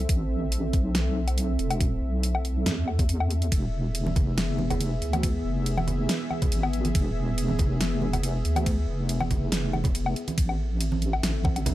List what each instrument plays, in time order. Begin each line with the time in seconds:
Already playing: analog synth pad C4 A4 E5
0.09 wobble bass A1, kick, closed hi-hat
0.52 closed hi-hat
0.73 wobble bass B1, kick, closed hi-hat
0.95 snare, closed hi-hat
1.28 closed hi-hat, low woodblock
1.38 closed hi-hat
1.59 wobble bass E1, closed hi-hat
1.71 closed hi-hat, low woodblock
1.81 kick, closed hi-hat
2.02 wobble bass B1
2.23 closed hi-hat
2.35 low woodblock
2.45 closed hi-hat
2.66 wobble bass E2, snare, closed hi-hat
2.88 low woodblock
2.99 kick, closed hi-hat
3.09 closed hi-hat
3.20 low woodblock
3.31 closed hi-hat
3.42 closed hi-hat
3.52 wobble bass E1, analog synth pad B3 G#4, kick, closed hi-hat, ride
3.95 closed hi-hat, ride
4.07 high conga
4.16 wobble bass F1, kick, closed hi-hat, low conga
4.38 snare, closed hi-hat, ride
4.58 high conga
4.70 closed hi-hat, low conga, low woodblock
4.81 closed hi-hat, ride
5.02 wobble bass D2, closed hi-hat
5.13 closed hi-hat, high conga, low woodblock
5.23 kick, closed hi-hat, ride
5.45 wobble bass F1
5.66 closed hi-hat, ride
5.78 high conga, low woodblock
5.87 closed hi-hat, low conga
6.09 snare, closed hi-hat, ride
6.31 high conga, low woodblock
6.42 kick, closed hi-hat, low conga
6.52 wobble bass G#1, closed hi-hat, ride
6.63 low woodblock
6.73 closed hi-hat
6.85 closed hi-hat, high conga
6.95 wobble bass E1, kick, closed hi-hat, ride
7.38 closed hi-hat, ride
7.49 high conga
7.59 wobble bass F1, kick, closed hi-hat, low conga
7.81 snare, closed hi-hat, ride
8.02 high conga
8.13 closed hi-hat, low conga, low woodblock
8.23 closed hi-hat, ride
8.45 wobble bass D2, closed hi-hat
8.56 closed hi-hat, high conga, low woodblock
8.66 kick, closed hi-hat, ride
8.88 wobble bass F1
9.09 closed hi-hat, ride
9.20 high conga, low woodblock
9.31 kick, closed hi-hat, low conga
9.52 wobble bass F1, snare, closed hi-hat, ride
9.73 high conga, low woodblock
9.84 kick, closed hi-hat, low conga
9.95 closed hi-hat, ride
10.06 low woodblock
10.16 closed hi-hat
10.28 closed hi-hat, high conga
10.38 wobble bass A1, analog synth pad C4 A4 E5, kick, closed hi-hat, ride
10.49 low woodblock
10.81 closed hi-hat, ride
10.92 high conga
11.02 closed hi-hat
11.13 low woodblock
11.23 wobble bass A1, snare, closed hi-hat, ride
11.44 kick, high conga, low woodblock
11.56 closed hi-hat, low woodblock
11.66 closed hi-hat, ride, low conga